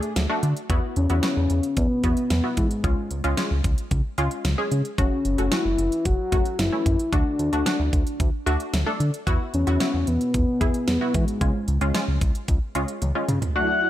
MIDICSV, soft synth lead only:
0, 0, Header, 1, 2, 480
1, 0, Start_track
1, 0, Tempo, 535714
1, 625, Time_signature, 4, 2, 24, 8
1, 12454, End_track
2, 0, Start_track
2, 0, Title_t, "Soft synth lead"
2, 0, Program_c, 0, 80
2, 0, Note_on_c, 0, 57, 98
2, 350, Note_off_c, 0, 57, 0
2, 866, Note_on_c, 0, 61, 118
2, 1583, Note_on_c, 0, 59, 106
2, 1596, Note_off_c, 0, 61, 0
2, 2060, Note_off_c, 0, 59, 0
2, 2065, Note_on_c, 0, 59, 97
2, 2288, Note_off_c, 0, 59, 0
2, 2307, Note_on_c, 0, 56, 83
2, 2990, Note_off_c, 0, 56, 0
2, 4468, Note_on_c, 0, 61, 96
2, 4946, Note_on_c, 0, 64, 107
2, 4959, Note_off_c, 0, 61, 0
2, 5425, Note_on_c, 0, 66, 117
2, 5438, Note_off_c, 0, 64, 0
2, 5905, Note_on_c, 0, 64, 107
2, 5918, Note_off_c, 0, 66, 0
2, 6387, Note_on_c, 0, 62, 94
2, 6400, Note_off_c, 0, 64, 0
2, 7346, Note_off_c, 0, 62, 0
2, 8549, Note_on_c, 0, 61, 119
2, 9026, Note_on_c, 0, 59, 116
2, 9040, Note_off_c, 0, 61, 0
2, 9741, Note_off_c, 0, 59, 0
2, 9747, Note_on_c, 0, 59, 98
2, 9985, Note_on_c, 0, 56, 86
2, 9998, Note_off_c, 0, 59, 0
2, 10705, Note_off_c, 0, 56, 0
2, 12144, Note_on_c, 0, 90, 120
2, 12454, Note_off_c, 0, 90, 0
2, 12454, End_track
0, 0, End_of_file